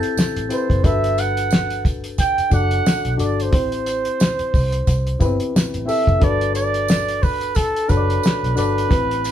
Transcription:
Already playing: C4 E4 G4 A4 B4
0.00 G6, closed hi-hat
0.17 muted fingered electric bass stroke, snare, tambourine
0.36 A1, closed hi-hat
0.49 C4 E4 G4 B4 C5, closed hi-hat, tambourine
0.70 F#1, kick, closed hi-hat
0.83 G1 D4 F#4 A4 B4 E5, kick, closed hi-hat, tambourine
1.04 closed hi-hat
1.18 F#5, closed hi-hat, tambourine
1.37 closed hi-hat
1.51 snare, tambourine
1.70 closed hi-hat
1.85 kick, closed hi-hat, tambourine
2.04 closed hi-hat
2.18 G5, kick, closed hi-hat, tambourine
2.38 muted fingered electric bass stroke, closed hi-hat
2.50 F#1 D4 F#4 A4 D5 F#5, kick, closed hi-hat, tambourine
2.71 closed hi-hat
2.86 snare, tambourine
3.05 B1, closed hi-hat
3.17 G1 D4 F#4 A4 D5, closed hi-hat, tambourine
3.23 D5
3.40 C5, closed hi-hat
3.51 A1 C4 E4 G4 C5, kick, closed hi-hat
3.72 closed hi-hat
3.86 closed hi-hat, tambourine
4.05 closed hi-hat
4.20 snare, tambourine
4.39 muted fingered electric bass stroke, closed hi-hat
4.54 C2, kick, open hi-hat, tambourine
4.72 closed hi-hat
4.87 C2, kick, closed hi-hat, tambourine
5.07 closed hi-hat
5.19 G1 B3 E4 G4 B4, kick, closed hi-hat, tambourine
5.26 C4
5.40 closed hi-hat
5.55 muted fingered electric bass stroke, snare, tambourine
5.74 A1, closed hi-hat
5.86 C4 E4 G4 A4 E5, open hi-hat, tambourine
6.07 F#1, kick, closed hi-hat
6.20 G1 D4 F#4 A4 B4, kick, closed hi-hat
6.24 D5
6.41 closed hi-hat
6.55 D5, closed hi-hat, tambourine
6.74 closed hi-hat
6.88 snare, tambourine
7.08 closed hi-hat
7.23 B4, kick, open hi-hat, tambourine
7.41 closed hi-hat
7.55 A4, kick, closed hi-hat, tambourine
7.76 closed hi-hat
7.88 F#1 D4 F#4 A4 B4 C#5, kick, closed hi-hat, tambourine
7.97 D5
8.10 closed hi-hat
8.23 snare, tambourine
8.43 B1, closed hi-hat
8.56 G1 D4 F#4 A4 B4 D5, closed hi-hat, tambourine
8.78 closed hi-hat
8.89 A1 C4 E4 G4 B4, kick, closed hi-hat, tambourine
9.11 closed hi-hat
9.24 closed hi-hat, tambourine

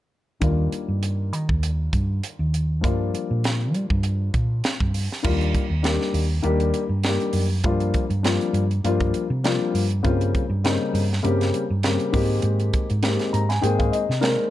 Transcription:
0.40 D#2 D#3 G3 A#3 D4 F4, kick, closed hi-hat
0.72 closed hi-hat
0.88 G2
1.03 closed hi-hat
1.33 D#3, closed hi-hat
1.49 D#2, kick
1.63 closed hi-hat
1.93 G2, kick, closed hi-hat
2.23 closed hi-hat
2.39 D#2
2.54 closed hi-hat
2.81 G2 F3 G3 A#3 D4 F4, kick, closed hi-hat
3.14 muted fingered electric bass stroke, closed hi-hat
3.31 A#2
3.44 snare, closed hi-hat
3.74 G3, closed hi-hat
3.90 G2, kick
4.03 closed hi-hat
4.34 A#2, kick, closed hi-hat
4.64 snare, closed hi-hat
4.80 G2, kick
4.94 open hi-hat
5.12 snare
5.23 D#2 D#3 G3 A#3 D4 F4, kick, crash
5.41 closed hi-hat
5.55 kick, closed hi-hat
5.70 D#2
5.83 D#3 G3 A#3 D4 G4, snare, closed hi-hat
6.02 snare
6.14 D#2, open hi-hat
6.42 D#2 D#3 G3 A#3 D4 G4, closed hi-hat
6.60 closed hi-hat
6.74 closed hi-hat
6.89 G2
7.03 D#3 G3 A#3 D4 G4, snare, closed hi-hat
7.20 closed hi-hat
7.33 F#2, open hi-hat
7.64 G2 F3 G3 A#3 D4 F4, kick, closed hi-hat
7.80 closed hi-hat
7.94 kick, closed hi-hat
8.10 G2, closed hi-hat
8.23 F3 G3 A#3 D4 F4, snare, closed hi-hat
8.41 closed hi-hat
8.53 G2, closed hi-hat
8.71 closed hi-hat
8.84 G2 F3 G3 A#3 D4 F4, closed hi-hat
9.00 kick, closed hi-hat
9.14 closed hi-hat
9.30 C3
9.44 F3 G3 A#3 D4 F4, snare, closed hi-hat
9.74 G2, open hi-hat
9.91 closed hi-hat
10.03 G2 C#3 G3 A#3 C4 F4, kick, closed hi-hat
10.21 closed hi-hat
10.35 kick, closed hi-hat
10.49 G2
10.64 C#3 G3 A#3 C4 D#4, snare, closed hi-hat
10.94 G2, open hi-hat
11.13 snare
11.23 G2 C#3 G3 A#3 C4 G4, closed hi-hat
11.41 snare, closed hi-hat
11.54 closed hi-hat
11.70 G2
11.83 C#3 G3 A#3 C4 G4, snare, closed hi-hat
12.00 closed hi-hat
12.12 G#2 D#3 G#3 A#3 C4 G4, kick, open hi-hat
12.42 G#2, closed hi-hat
12.60 closed hi-hat
12.73 kick, closed hi-hat
12.90 G#2, closed hi-hat
13.02 D#3 G#3 A#3 C4 G4, snare, closed hi-hat
13.19 snare, closed hi-hat
13.33 G#2 A#5, closed hi-hat
13.49 G#5, snare, closed hi-hat
13.61 G#2 D#3 G#3 A#3 C4 G#4 G5, closed hi-hat
13.79 F5, kick, closed hi-hat
13.92 D#5, closed hi-hat
14.09 C3, snare
14.20 D#3 G#3 A#3 C4 A#4 D5, snare, closed hi-hat

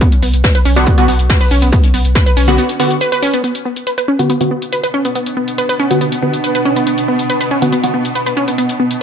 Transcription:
0.01 B3, kick, closed hi-hat, shaker
0.12 closed hi-hat
0.23 B1 B3, open hi-hat, shaker
0.34 B1, closed hi-hat
0.44 B4, kick, snare, closed hi-hat, shaker
0.55 B4, closed hi-hat
0.65 B1 C#4, open hi-hat, shaker
0.76 B1 D3 B3 F#4, snare, closed hi-hat
0.86 B3, kick, closed hi-hat, shaker
0.98 D3 B3 F#4, closed hi-hat
1.08 B1 B3, open hi-hat, shaker
1.19 B1, closed hi-hat
1.30 B4, kick, snare, closed hi-hat, open hi-hat
1.41 B4, closed hi-hat
1.50 B1 C#4, open hi-hat, shaker
1.62 B1 B3, closed hi-hat
1.72 B3, kick, closed hi-hat, shaker
1.84 closed hi-hat
1.94 B1 B3, open hi-hat, shaker
2.05 B1, closed hi-hat
2.15 B4, kick, snare, closed hi-hat, shaker
2.26 B4, closed hi-hat
2.37 B1 C#4, open hi-hat, shaker
2.47 B1 D3 B3 F#4, snare, closed hi-hat
2.58 B3, closed hi-hat, shaker
2.69 closed hi-hat
2.79 D3 B3 F#4, open hi-hat, shaker
2.91 closed hi-hat
3.01 B4, closed hi-hat, shaker
3.12 B4, closed hi-hat
3.23 C#4, open hi-hat, shaker
3.34 B3, closed hi-hat
3.44 B2 B3 D4, closed hi-hat
3.55 closed hi-hat
3.65 B3
3.76 closed hi-hat
3.84 B4, closed hi-hat
3.98 B4, closed hi-hat
4.08 C#4
4.19 D3 B3 F#4, closed hi-hat
4.30 B3, closed hi-hat
4.41 D3 B3 F#4 F#5, closed hi-hat
4.51 B3
4.62 closed hi-hat
4.73 B4, closed hi-hat
4.84 B4, closed hi-hat
4.94 C#4
5.05 B3, closed hi-hat
5.15 B3, closed hi-hat
5.26 closed hi-hat
5.37 B3
5.48 closed hi-hat
5.58 B4, closed hi-hat
5.69 B4, closed hi-hat
5.80 C#4
5.91 D3 B3 F#4, closed hi-hat
6.01 B3, closed hi-hat
6.12 closed hi-hat
6.22 D3 B3 F#4
6.34 closed hi-hat
6.44 B4, closed hi-hat
6.55 B4, closed hi-hat
6.65 C#4
6.76 B3, closed hi-hat
6.87 B3, closed hi-hat
6.98 closed hi-hat
7.08 B3
7.19 closed hi-hat
7.30 B4, closed hi-hat
7.41 B4, closed hi-hat
7.51 C#4
7.62 D3 B3 F#4, closed hi-hat
7.72 B3, closed hi-hat
7.83 D3 B3 F#4, closed hi-hat
7.94 B3
8.05 closed hi-hat
8.15 B4, closed hi-hat
8.26 B4, closed hi-hat
8.37 C#4
8.48 B3, closed hi-hat
8.58 B3, closed hi-hat
8.69 closed hi-hat
8.80 B3
8.91 closed hi-hat

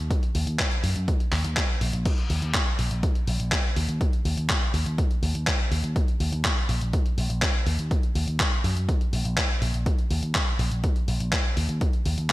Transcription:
0.11 kick, closed hi-hat
0.23 closed hi-hat
0.35 D#2, open hi-hat
0.47 D#2, closed hi-hat
0.59 kick, clap, closed hi-hat
0.71 closed hi-hat
0.84 F#2, open hi-hat
0.96 F#2, closed hi-hat
1.08 kick, closed hi-hat
1.20 closed hi-hat
1.32 D#2, clap, open hi-hat
1.44 D#2, closed hi-hat
1.57 kick, clap, closed hi-hat
1.81 A#1, open hi-hat
1.93 A#1, closed hi-hat
2.06 kick, closed hi-hat, crash
2.18 closed hi-hat
2.30 D#2, open hi-hat
2.42 D#2, closed hi-hat
2.54 kick, clap, closed hi-hat
2.79 A#1, open hi-hat
2.91 A#1, closed hi-hat
3.03 kick, closed hi-hat
3.15 closed hi-hat
3.27 A#1, open hi-hat
3.40 A#1, closed hi-hat
3.52 kick, clap, closed hi-hat
3.76 D#2, open hi-hat
3.89 D#2, closed hi-hat
4.01 kick, closed hi-hat
4.13 closed hi-hat
4.25 D#2, open hi-hat
4.37 D#2, closed hi-hat
4.50 kick, clap, closed hi-hat
4.74 D#2, open hi-hat
4.86 D#2, closed hi-hat
4.98 kick, closed hi-hat
5.11 closed hi-hat
5.23 D#2, open hi-hat
5.35 D#2, closed hi-hat
5.47 kick, clap, closed hi-hat
5.71 D#2, open hi-hat
5.84 D#2, closed hi-hat
5.96 kick, closed hi-hat
6.08 closed hi-hat
6.20 D#2, open hi-hat
6.32 D#2, closed hi-hat
6.45 kick, clap, closed hi-hat
6.69 A#1, open hi-hat
6.81 A#1, closed hi-hat
6.93 kick, closed hi-hat
7.06 closed hi-hat
7.18 A#1, open hi-hat
7.30 A#1, closed hi-hat
7.42 kick, clap, closed hi-hat
7.67 D#2, open hi-hat
7.79 D#2, closed hi-hat
7.91 kick, closed hi-hat
8.03 closed hi-hat
8.15 D#2, open hi-hat
8.27 D#2, closed hi-hat
8.40 kick, clap, closed hi-hat
8.64 F#2, open hi-hat
8.76 F#2, closed hi-hat
8.89 kick, closed hi-hat
9.01 closed hi-hat
9.13 A#1, open hi-hat
9.25 A#1, closed hi-hat
9.37 kick, clap, closed hi-hat
9.62 A#1, open hi-hat
9.74 A#1, closed hi-hat
9.86 kick, closed hi-hat
9.98 closed hi-hat
10.11 D#2, open hi-hat
10.23 D#2, closed hi-hat
10.35 kick, clap, closed hi-hat
10.59 A#1, open hi-hat
10.71 A#1, closed hi-hat
10.84 kick, closed hi-hat
10.96 closed hi-hat
11.08 A#1, open hi-hat
11.20 A#1, closed hi-hat
11.33 kick, clap, closed hi-hat
11.57 D#2, open hi-hat
11.69 D#2, closed hi-hat
11.81 kick, closed hi-hat
11.93 closed hi-hat
12.06 D#2, open hi-hat
12.18 D#2, closed hi-hat

